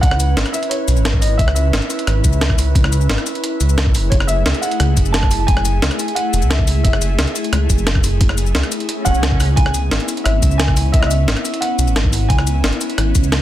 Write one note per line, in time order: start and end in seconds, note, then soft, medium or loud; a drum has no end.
0.00 0.35 C#2 loud
0.00 3.91 C#4 medium
0.00 9.53 E4 medium
0.00 3.91 B4 medium
0.00 0.55 F#5 loud
0.00 kick loud
0.00 closed hi-hat medium
0.11 cross-stick medium
0.20 closed hi-hat medium
0.20 shaker medium
0.37 0.45 G#1 medium
0.37 snare loud
0.37 closed hi-hat medium
0.46 cross-stick soft
0.46 closed hi-hat soft
0.53 0.71 E5 loud
0.53 closed hi-hat medium
0.53 shaker medium
0.63 closed hi-hat soft
0.69 1.18 C#5 loud
0.69 closed hi-hat loud
0.88 0.98 B1 loud
0.88 closed hi-hat medium
0.88 shaker medium
0.96 1.38 G#1 loud
0.96 shaker soft
1.05 snare loud
1.05 closed hi-hat medium
1.13 kick loud
1.20 1.37 D#5 loud
1.20 open hi-hat medium
1.20 shaker medium
1.37 1.72 C#2 loud
1.37 1.53 E5 loud
1.37 kick loud
1.37 closed hi-hat medium
1.48 cross-stick medium
1.55 2.54 E5 medium
1.55 closed hi-hat medium
1.55 shaker medium
1.73 1.81 G#1 medium
1.73 snare loud
1.73 closed hi-hat medium
1.82 closed hi-hat soft
1.90 closed hi-hat medium
1.90 shaker medium
1.99 closed hi-hat soft
2.07 2.23 G#1 medium
2.07 cross-stick soft
2.07 closed hi-hat medium
2.24 2.74 C#2 medium
2.24 kick medium
2.24 closed hi-hat medium
2.24 shaker medium
2.33 shaker soft
2.41 snare loud
2.41 closed hi-hat medium
2.50 kick loud
2.50 cross-stick soft
2.58 open hi-hat medium
2.58 shaker medium
2.75 3.08 C#2 loud
2.75 kick loud
2.75 closed hi-hat medium
2.84 cross-stick medium
2.93 closed hi-hat medium
2.93 shaker medium
3.01 shaker soft
3.09 3.17 G#1 medium
3.09 snare loud
3.09 closed hi-hat medium
3.18 cross-stick soft
3.18 closed hi-hat soft
3.27 closed hi-hat medium
3.27 shaker medium
3.35 closed hi-hat soft
3.44 closed hi-hat medium
3.60 3.96 C#2 loud
3.60 closed hi-hat medium
3.60 shaker medium
3.69 shaker soft
3.78 snare loud
3.78 closed hi-hat medium
3.86 kick loud
3.95 4.10 F#1 loud
3.95 9.53 A3 medium
3.95 9.53 G#4 medium
3.95 open hi-hat medium
3.95 shaker medium
4.10 4.44 F#1 loud
4.10 4.15 C#5 loud
4.10 kick loud
4.10 closed hi-hat medium
4.20 cross-stick medium
4.27 4.63 E5 loud
4.27 closed hi-hat medium
4.27 shaker medium
4.46 4.54 C#2 medium
4.46 snare loud
4.46 closed hi-hat medium
4.54 closed hi-hat soft
4.61 5.15 F#5 loud
4.61 closed hi-hat medium
4.61 shaker medium
4.71 closed hi-hat soft
4.80 4.95 C#2 medium
4.80 cross-stick soft
4.80 closed hi-hat medium
4.97 5.47 F#1 medium
4.97 kick medium
4.97 closed hi-hat medium
4.97 shaker medium
5.06 shaker soft
5.12 5.38 A5 loud
5.12 snare loud
5.12 closed hi-hat medium
5.23 kick loud
5.23 cross-stick soft
5.31 open hi-hat medium
5.31 shaker medium
5.40 5.47 A5 medium
5.47 5.81 F#1 loud
5.47 6.18 G#5 loud
5.47 kick loud
5.47 closed hi-hat medium
5.57 cross-stick medium
5.65 closed hi-hat medium
5.65 shaker medium
5.82 5.90 C#2 medium
5.82 snare loud
5.82 closed hi-hat medium
5.91 cross-stick soft
5.91 closed hi-hat soft
5.99 closed hi-hat medium
5.99 shaker medium
6.08 closed hi-hat soft
6.15 6.51 F#5 loud
6.15 closed hi-hat medium
6.33 6.44 E1 medium
6.33 closed hi-hat medium
6.33 shaker medium
6.42 6.83 C#2 loud
6.42 shaker soft
6.50 6.82 E5 medium
6.50 snare loud
6.50 closed hi-hat medium
6.59 kick loud
6.68 open hi-hat medium
6.68 shaker medium
6.84 7.17 F#1 loud
6.84 7.48 E5 medium
6.84 kick loud
6.84 closed hi-hat loud
6.93 cross-stick medium
7.02 closed hi-hat medium
7.02 shaker medium
7.19 7.26 C#2 medium
7.19 snare loud
7.19 closed hi-hat medium
7.27 closed hi-hat soft
7.36 closed hi-hat medium
7.36 shaker medium
7.44 closed hi-hat soft
7.53 7.68 C#2 medium
7.53 cross-stick soft
7.53 closed hi-hat medium
7.70 8.19 F#1 medium
7.70 kick medium
7.70 closed hi-hat medium
7.70 shaker medium
7.78 shaker soft
7.87 snare loud
7.87 closed hi-hat medium
7.95 kick loud
7.95 cross-stick soft
8.04 open hi-hat medium
8.04 shaker medium
8.21 8.54 F#1 loud
8.21 kick loud
8.21 closed hi-hat loud
8.29 cross-stick medium
8.38 closed hi-hat medium
8.38 shaker medium
8.46 shaker soft
8.55 8.63 C#2 medium
8.55 snare loud
8.55 closed hi-hat medium
8.63 cross-stick soft
8.63 closed hi-hat soft
8.72 closed hi-hat medium
8.72 shaker medium
8.80 closed hi-hat soft
8.89 closed hi-hat loud
8.89 swell medium
9.05 9.16 E1 medium
9.05 9.58 F#5 loud
9.05 kick medium
9.05 closed hi-hat medium
9.05 shaker medium
9.15 9.56 C#2 loud
9.15 shaker soft
9.23 snare loud
9.23 closed hi-hat loud
9.32 kick loud
9.40 cross-stick soft
9.40 open hi-hat medium
9.40 shaker medium
9.56 9.90 C#2 medium
9.56 13.42 B3 medium
9.56 12.27 C#4 medium
9.56 13.42 E4 medium
9.56 10.04 G#5 loud
9.56 kick loud
9.56 closed hi-hat medium
9.66 cross-stick medium
9.74 closed hi-hat medium
9.74 shaker medium
9.91 9.99 G#1 medium
9.91 snare loud
9.91 closed hi-hat loud
10.00 closed hi-hat soft
10.09 closed hi-hat medium
10.09 shaker medium
10.17 closed hi-hat soft
10.24 10.41 G#1 medium
10.24 10.60 E5 loud
10.24 cross-stick medium
10.24 closed hi-hat loud
10.42 10.92 C#2 medium
10.42 kick medium
10.42 closed hi-hat medium
10.42 shaker medium
10.51 shaker soft
10.58 10.90 G#5 loud
10.58 snare loud
10.58 closed hi-hat loud
10.68 kick loud
10.68 cross-stick soft
10.77 open hi-hat medium
10.77 shaker medium
10.92 11.26 C#2 loud
10.92 11.00 E5 loud
10.92 kick loud
10.92 closed hi-hat medium
10.99 11.07 D#5 medium
10.99 cross-stick medium
11.06 11.63 E5 loud
11.11 closed hi-hat medium
11.11 shaker medium
11.27 11.35 G#1 medium
11.27 snare loud
11.27 closed hi-hat medium
11.37 cross-stick soft
11.37 closed hi-hat soft
11.45 closed hi-hat medium
11.45 shaker medium
11.54 closed hi-hat soft
11.61 12.31 F#5 loud
11.61 closed hi-hat medium
11.78 11.89 B1 loud
11.78 closed hi-hat medium
11.78 shaker medium
11.87 12.29 G#1 loud
11.87 shaker soft
11.96 snare loud
11.96 closed hi-hat medium
12.04 kick loud
12.13 open hi-hat medium
12.13 shaker medium
12.29 12.63 C#2 loud
12.29 13.42 C#4 medium
12.29 12.61 G#5 loud
12.29 kick loud
12.29 closed hi-hat medium
12.38 cross-stick medium
12.47 closed hi-hat medium
12.47 shaker medium
12.64 12.72 G#1 medium
12.64 snare loud
12.64 closed hi-hat medium
12.73 closed hi-hat soft
12.81 closed hi-hat medium
12.81 shaker medium
12.90 closed hi-hat soft
12.98 13.13 G#1 loud
12.98 cross-stick medium
12.98 closed hi-hat medium
13.15 13.42 C#2 medium
13.15 kick medium
13.15 closed hi-hat medium
13.15 shaker medium
13.24 shaker soft
13.32 snare loud
13.32 closed hi-hat medium